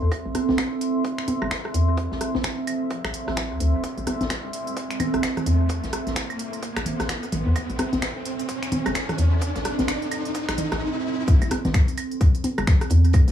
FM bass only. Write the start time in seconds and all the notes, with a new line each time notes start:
0.02 E2
0.26 A1
0.49 A1
1.42 G1
1.74 E2
2.12 A1
2.35 A1
3.05 A1
3.28 A1
3.51 D2
3.60 D2
3.74 E1
3.98 A1
4.21 A1
5.14 G1
5.46 E2
5.84 A1
6.07 A1
6.77 A1
7.00 A1
7.32 A1
7.46 E2
7.70 A1
7.93 A1
8.86 G1
9.18 E2
9.56 A1
9.79 A1
10.49 A1
10.72 A1
11.42 A1
11.65 A1
12.58 G1
12.91 E2
13.28 A1